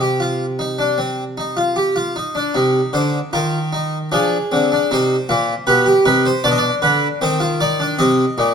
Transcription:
0, 0, Header, 1, 2, 480
1, 0, Start_track
1, 0, Key_signature, -3, "minor"
1, 0, Tempo, 779221
1, 1569, Time_signature, 4, 2, 24, 8
1, 5262, End_track
2, 0, Start_track
2, 0, Title_t, "Harpsichord"
2, 0, Program_c, 0, 6
2, 0, Note_on_c, 0, 48, 74
2, 0, Note_on_c, 0, 72, 66
2, 6, Note_on_c, 0, 67, 69
2, 119, Note_off_c, 0, 67, 0
2, 124, Note_on_c, 0, 65, 59
2, 272, Note_off_c, 0, 65, 0
2, 364, Note_on_c, 0, 63, 69
2, 479, Note_off_c, 0, 63, 0
2, 484, Note_on_c, 0, 62, 62
2, 600, Note_off_c, 0, 62, 0
2, 604, Note_on_c, 0, 60, 60
2, 753, Note_off_c, 0, 60, 0
2, 847, Note_on_c, 0, 63, 56
2, 963, Note_off_c, 0, 63, 0
2, 965, Note_on_c, 0, 65, 61
2, 1082, Note_off_c, 0, 65, 0
2, 1085, Note_on_c, 0, 67, 64
2, 1202, Note_off_c, 0, 67, 0
2, 1207, Note_on_c, 0, 65, 65
2, 1305, Note_off_c, 0, 72, 0
2, 1306, Note_off_c, 0, 48, 0
2, 1324, Note_off_c, 0, 65, 0
2, 1331, Note_on_c, 0, 63, 70
2, 1447, Note_off_c, 0, 63, 0
2, 1448, Note_on_c, 0, 62, 63
2, 1565, Note_off_c, 0, 62, 0
2, 1567, Note_on_c, 0, 63, 60
2, 1570, Note_on_c, 0, 48, 67
2, 1719, Note_off_c, 0, 48, 0
2, 1807, Note_on_c, 0, 50, 66
2, 1809, Note_on_c, 0, 72, 87
2, 1957, Note_off_c, 0, 50, 0
2, 1959, Note_off_c, 0, 72, 0
2, 2036, Note_off_c, 0, 63, 0
2, 2052, Note_on_c, 0, 51, 69
2, 2052, Note_on_c, 0, 65, 67
2, 2053, Note_on_c, 0, 70, 77
2, 2201, Note_off_c, 0, 65, 0
2, 2295, Note_on_c, 0, 63, 70
2, 2443, Note_off_c, 0, 63, 0
2, 2518, Note_off_c, 0, 51, 0
2, 2519, Note_off_c, 0, 70, 0
2, 2536, Note_on_c, 0, 62, 71
2, 2537, Note_on_c, 0, 53, 67
2, 2541, Note_on_c, 0, 68, 86
2, 2684, Note_off_c, 0, 53, 0
2, 2684, Note_off_c, 0, 62, 0
2, 2782, Note_on_c, 0, 60, 65
2, 2786, Note_on_c, 0, 50, 67
2, 2894, Note_off_c, 0, 60, 0
2, 2907, Note_on_c, 0, 62, 66
2, 2930, Note_off_c, 0, 50, 0
2, 3002, Note_off_c, 0, 68, 0
2, 3016, Note_off_c, 0, 62, 0
2, 3025, Note_on_c, 0, 63, 73
2, 3028, Note_on_c, 0, 48, 72
2, 3029, Note_on_c, 0, 72, 84
2, 3169, Note_off_c, 0, 63, 0
2, 3171, Note_off_c, 0, 48, 0
2, 3260, Note_on_c, 0, 46, 81
2, 3260, Note_on_c, 0, 65, 87
2, 3404, Note_off_c, 0, 46, 0
2, 3405, Note_off_c, 0, 65, 0
2, 3483, Note_off_c, 0, 72, 0
2, 3492, Note_on_c, 0, 71, 89
2, 3493, Note_on_c, 0, 47, 70
2, 3494, Note_on_c, 0, 67, 77
2, 3602, Note_off_c, 0, 67, 0
2, 3605, Note_off_c, 0, 71, 0
2, 3610, Note_on_c, 0, 67, 78
2, 3639, Note_off_c, 0, 47, 0
2, 3723, Note_off_c, 0, 67, 0
2, 3729, Note_on_c, 0, 63, 71
2, 3730, Note_on_c, 0, 48, 71
2, 3730, Note_on_c, 0, 71, 94
2, 3842, Note_off_c, 0, 71, 0
2, 3854, Note_on_c, 0, 72, 100
2, 3875, Note_off_c, 0, 48, 0
2, 3875, Note_off_c, 0, 63, 0
2, 3963, Note_off_c, 0, 72, 0
2, 3966, Note_on_c, 0, 74, 99
2, 3968, Note_on_c, 0, 47, 68
2, 3968, Note_on_c, 0, 62, 80
2, 3991, Note_off_c, 0, 74, 0
2, 4012, Note_on_c, 0, 75, 86
2, 4051, Note_off_c, 0, 75, 0
2, 4053, Note_on_c, 0, 74, 95
2, 4113, Note_off_c, 0, 47, 0
2, 4145, Note_off_c, 0, 74, 0
2, 4202, Note_on_c, 0, 71, 98
2, 4203, Note_on_c, 0, 50, 77
2, 4349, Note_off_c, 0, 50, 0
2, 4349, Note_off_c, 0, 71, 0
2, 4427, Note_off_c, 0, 62, 0
2, 4444, Note_on_c, 0, 60, 74
2, 4446, Note_on_c, 0, 72, 87
2, 4447, Note_on_c, 0, 51, 86
2, 4557, Note_off_c, 0, 60, 0
2, 4559, Note_on_c, 0, 65, 77
2, 4592, Note_off_c, 0, 72, 0
2, 4675, Note_off_c, 0, 65, 0
2, 4685, Note_on_c, 0, 63, 72
2, 4685, Note_on_c, 0, 74, 91
2, 4798, Note_off_c, 0, 63, 0
2, 4805, Note_on_c, 0, 62, 71
2, 4832, Note_off_c, 0, 74, 0
2, 4909, Note_off_c, 0, 51, 0
2, 4918, Note_off_c, 0, 62, 0
2, 4920, Note_on_c, 0, 60, 80
2, 4920, Note_on_c, 0, 75, 87
2, 4924, Note_on_c, 0, 48, 79
2, 5069, Note_off_c, 0, 60, 0
2, 5071, Note_off_c, 0, 48, 0
2, 5161, Note_on_c, 0, 46, 87
2, 5163, Note_on_c, 0, 63, 85
2, 5262, Note_off_c, 0, 46, 0
2, 5262, Note_off_c, 0, 63, 0
2, 5262, Note_off_c, 0, 75, 0
2, 5262, End_track
0, 0, End_of_file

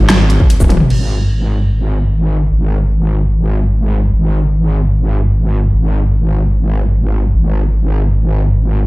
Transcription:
0, 0, Header, 1, 3, 480
1, 0, Start_track
1, 0, Tempo, 500000
1, 8514, End_track
2, 0, Start_track
2, 0, Title_t, "Wobble bass"
2, 0, Program_c, 0, 39
2, 0, Note_on_c, 0, 32, 98
2, 369, Note_off_c, 0, 32, 0
2, 578, Note_on_c, 0, 27, 95
2, 756, Note_off_c, 0, 27, 0
2, 867, Note_on_c, 0, 32, 82
2, 2394, Note_off_c, 0, 32, 0
2, 2413, Note_on_c, 0, 32, 85
2, 3941, Note_off_c, 0, 32, 0
2, 3960, Note_on_c, 0, 32, 84
2, 5487, Note_off_c, 0, 32, 0
2, 5506, Note_on_c, 0, 32, 82
2, 7033, Note_off_c, 0, 32, 0
2, 7053, Note_on_c, 0, 32, 84
2, 8514, Note_off_c, 0, 32, 0
2, 8514, End_track
3, 0, Start_track
3, 0, Title_t, "Drums"
3, 94, Note_on_c, 9, 38, 117
3, 94, Note_on_c, 9, 42, 83
3, 190, Note_off_c, 9, 38, 0
3, 190, Note_off_c, 9, 42, 0
3, 287, Note_on_c, 9, 42, 55
3, 383, Note_off_c, 9, 42, 0
3, 385, Note_on_c, 9, 36, 62
3, 480, Note_on_c, 9, 42, 84
3, 481, Note_off_c, 9, 36, 0
3, 576, Note_off_c, 9, 42, 0
3, 578, Note_on_c, 9, 36, 59
3, 578, Note_on_c, 9, 82, 64
3, 674, Note_off_c, 9, 36, 0
3, 674, Note_off_c, 9, 82, 0
3, 674, Note_on_c, 9, 42, 54
3, 674, Note_on_c, 9, 48, 64
3, 770, Note_off_c, 9, 42, 0
3, 770, Note_off_c, 9, 48, 0
3, 771, Note_on_c, 9, 47, 72
3, 867, Note_off_c, 9, 47, 0
3, 867, Note_on_c, 9, 49, 75
3, 963, Note_off_c, 9, 49, 0
3, 8514, End_track
0, 0, End_of_file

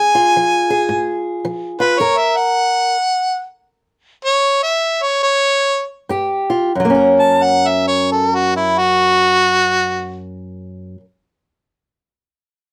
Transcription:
0, 0, Header, 1, 3, 480
1, 0, Start_track
1, 0, Key_signature, 6, "major"
1, 0, Tempo, 551471
1, 1720, Time_signature, 4, 2, 24, 8
1, 2687, Tempo, 573614
1, 3647, Tempo, 604230
1, 4607, Tempo, 648649
1, 5567, Tempo, 676437
1, 9811, End_track
2, 0, Start_track
2, 0, Title_t, "Harmonica"
2, 0, Program_c, 0, 22
2, 0, Note_on_c, 0, 80, 106
2, 1030, Note_off_c, 0, 80, 0
2, 1570, Note_on_c, 0, 71, 89
2, 1733, Note_on_c, 0, 73, 79
2, 1746, Note_off_c, 0, 71, 0
2, 1892, Note_on_c, 0, 76, 76
2, 1905, Note_off_c, 0, 73, 0
2, 2059, Note_on_c, 0, 78, 85
2, 2072, Note_off_c, 0, 76, 0
2, 2983, Note_off_c, 0, 78, 0
2, 3657, Note_on_c, 0, 73, 93
2, 3956, Note_off_c, 0, 73, 0
2, 3961, Note_on_c, 0, 76, 73
2, 4276, Note_on_c, 0, 73, 68
2, 4288, Note_off_c, 0, 76, 0
2, 4431, Note_off_c, 0, 73, 0
2, 4436, Note_on_c, 0, 73, 93
2, 4901, Note_off_c, 0, 73, 0
2, 5887, Note_on_c, 0, 81, 78
2, 6060, Note_on_c, 0, 78, 84
2, 6070, Note_off_c, 0, 81, 0
2, 6231, Note_on_c, 0, 76, 80
2, 6241, Note_off_c, 0, 78, 0
2, 6367, Note_off_c, 0, 76, 0
2, 6371, Note_on_c, 0, 73, 86
2, 6523, Note_off_c, 0, 73, 0
2, 6542, Note_on_c, 0, 69, 67
2, 6709, Note_on_c, 0, 66, 77
2, 6719, Note_off_c, 0, 69, 0
2, 6852, Note_off_c, 0, 66, 0
2, 6859, Note_on_c, 0, 64, 84
2, 7013, Note_on_c, 0, 66, 108
2, 7024, Note_off_c, 0, 64, 0
2, 8029, Note_off_c, 0, 66, 0
2, 9811, End_track
3, 0, Start_track
3, 0, Title_t, "Steel-string acoustic guitar"
3, 0, Program_c, 1, 25
3, 0, Note_on_c, 1, 49, 68
3, 0, Note_on_c, 1, 68, 68
3, 130, Note_on_c, 1, 65, 66
3, 258, Note_off_c, 1, 49, 0
3, 316, Note_on_c, 1, 53, 61
3, 596, Note_off_c, 1, 68, 0
3, 612, Note_on_c, 1, 68, 62
3, 743, Note_off_c, 1, 53, 0
3, 773, Note_on_c, 1, 44, 63
3, 1211, Note_off_c, 1, 44, 0
3, 1259, Note_on_c, 1, 53, 64
3, 1552, Note_off_c, 1, 65, 0
3, 1566, Note_on_c, 1, 65, 60
3, 1693, Note_off_c, 1, 53, 0
3, 1712, Note_off_c, 1, 65, 0
3, 1713, Note_off_c, 1, 68, 0
3, 1739, Note_on_c, 1, 42, 73
3, 1745, Note_on_c, 1, 70, 65
3, 2138, Note_off_c, 1, 42, 0
3, 2576, Note_off_c, 1, 70, 0
3, 5089, Note_on_c, 1, 43, 70
3, 5096, Note_on_c, 1, 67, 72
3, 5388, Note_on_c, 1, 65, 56
3, 5534, Note_off_c, 1, 43, 0
3, 5548, Note_off_c, 1, 65, 0
3, 5553, Note_off_c, 1, 67, 0
3, 5577, Note_on_c, 1, 42, 60
3, 5608, Note_on_c, 1, 54, 61
3, 5644, Note_on_c, 1, 58, 58
3, 5679, Note_on_c, 1, 61, 58
3, 5714, Note_on_c, 1, 70, 50
3, 8555, Note_off_c, 1, 42, 0
3, 8571, Note_off_c, 1, 54, 0
3, 8588, Note_off_c, 1, 58, 0
3, 8606, Note_off_c, 1, 61, 0
3, 8623, Note_off_c, 1, 70, 0
3, 9811, End_track
0, 0, End_of_file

